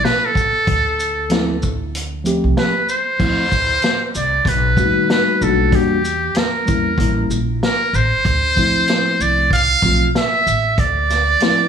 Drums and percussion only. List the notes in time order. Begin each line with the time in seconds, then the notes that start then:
0.05 snare, closed hi-hat
0.35 kick, shaker
0.67 kick, closed hi-hat
1.00 closed hi-hat, shaker
1.30 snare, closed hi-hat
1.63 kick, shaker
1.95 closed hi-hat
2.26 closed hi-hat, shaker
2.57 snare, closed hi-hat
2.89 shaker
3.20 kick, crash
3.52 kick, closed hi-hat, shaker
3.82 snare, closed hi-hat
4.15 closed hi-hat, shaker
4.45 kick, closed hi-hat
4.77 kick, shaker
5.10 snare, closed hi-hat
5.42 shaker
5.72 kick, closed hi-hat
6.05 closed hi-hat, shaker
6.35 snare, closed hi-hat
6.68 kick, closed hi-hat, shaker
6.98 kick, closed hi-hat
7.31 shaker
7.63 snare, closed hi-hat
7.94 shaker
8.25 kick, closed hi-hat
8.57 kick, closed hi-hat, shaker
8.88 snare, closed hi-hat
9.21 shaker
9.51 kick, closed hi-hat
9.82 kick, shaker
10.15 snare, closed hi-hat
10.47 shaker
10.78 kick, closed hi-hat
11.10 snare, closed hi-hat, shaker
11.40 snare, closed hi-hat